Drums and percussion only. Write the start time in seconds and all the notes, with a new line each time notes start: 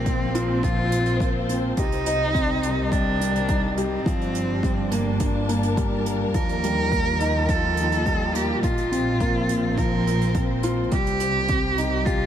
0.06 kick, closed hi-hat
0.35 closed hi-hat
0.63 kick, closed hi-hat
0.92 closed hi-hat
1.06 closed hi-hat
1.20 kick, closed hi-hat
1.49 closed hi-hat
1.77 kick, closed hi-hat
1.92 closed hi-hat
2.06 closed hi-hat
2.35 kick, closed hi-hat
2.63 closed hi-hat
2.92 kick, closed hi-hat
3.21 closed hi-hat
3.36 closed hi-hat
3.49 kick, closed hi-hat
3.77 closed hi-hat
4.06 kick, closed hi-hat
4.22 closed hi-hat
4.35 closed hi-hat
4.63 kick, closed hi-hat
4.92 closed hi-hat
5.20 kick, closed hi-hat
5.49 closed hi-hat
5.63 closed hi-hat
5.77 kick, closed hi-hat
6.06 closed hi-hat
6.34 kick, closed hi-hat
6.49 closed hi-hat
6.64 closed hi-hat
6.92 kick, closed hi-hat
7.20 closed hi-hat
7.49 kick, closed hi-hat
7.77 closed hi-hat
7.92 closed hi-hat
8.06 kick, closed hi-hat
8.35 closed hi-hat
8.63 kick, closed hi-hat
8.78 closed hi-hat
8.93 closed hi-hat
9.20 kick, closed hi-hat
9.49 closed hi-hat
9.78 kick, closed hi-hat
10.07 closed hi-hat
10.21 closed hi-hat
10.35 kick, closed hi-hat
10.63 closed hi-hat
10.92 kick, closed hi-hat
11.07 closed hi-hat
11.20 closed hi-hat
11.48 kick, closed hi-hat
11.78 closed hi-hat
12.06 kick, closed hi-hat